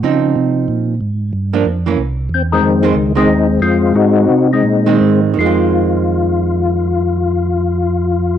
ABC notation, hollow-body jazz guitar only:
X:1
M:4/4
L:1/8
Q:"Swing" 1/4=177
K:Fm
V:1 name="Hollow-body jazz guitar" clef=bass
[F,CE]4- [F,CE] z3 | z [F,B,=D] z [=E,B,_D] z4 | z [E,A,C] z [E,A,C] z4 | z4 z [E,A,C]3 |
[E,A,C]8- | [E,A,C]8 |]